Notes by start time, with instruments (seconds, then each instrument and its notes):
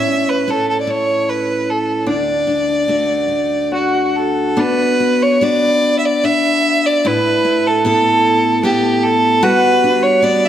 Already playing: steel-string acoustic guitar A2 E4, harp B3 C#4, fiddle E5
0.08 steel-string acoustic guitar C#4
0.29 fiddle B4
0.48 steel-string acoustic guitar C#4 E4 A4, fiddle A4
0.69 fiddle A4
0.81 fiddle D5
0.87 steel-string acoustic guitar E4, fiddle C#5
1.29 fiddle B4
1.70 fiddle A4
2.06 steel-string acoustic guitar D2, harp D4, fiddle D5
2.47 steel-string acoustic guitar D4
2.88 steel-string acoustic guitar A3 D4 F#4
3.28 steel-string acoustic guitar A3
3.72 harp F#4, fiddle F#4
4.16 fiddle A4
4.57 steel-string acoustic guitar B3, harp D4, fiddle B4
5.00 steel-string acoustic guitar F#4
5.22 fiddle C#5
5.41 steel-string acoustic guitar D4 F#4 B4, fiddle D5
5.99 fiddle E5
6.05 fiddle D5
6.24 steel-string acoustic guitar D4 F#4 B4, fiddle E5
6.86 fiddle D5
7.05 steel-string acoustic guitar A2, harp E4, fiddle B4
7.45 steel-string acoustic guitar E4
7.67 fiddle A4
7.85 steel-string acoustic guitar B3 E4 A4, fiddle A4
8.63 steel-string acoustic guitar B3 E4 A4, fiddle G4
9.03 fiddle A4
9.43 steel-string acoustic guitar G3, harp F#4, fiddle B4
9.84 steel-string acoustic guitar D4
10.03 fiddle C#5
10.22 steel-string acoustic guitar B3 D4, fiddle D5
10.46 fiddle E5